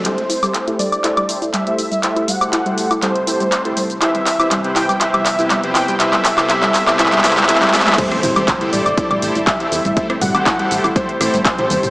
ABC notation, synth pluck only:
X:1
M:4/4
L:1/16
Q:1/4=121
K:Am
V:1 name="Synth pluck"
G, z E G, z E G, z E G, z E G, z E G, | z E G, z E G, z E G, z E G, z E G, z | E G, z E G, z E G, E G, z E G, z E G, | E G, z E E G, z E E G, E G, E G, E G, |
G, z E G, z E G, z E G, z E G, z E G, | z E G, z E G, z E G, z E G, z E G, z |]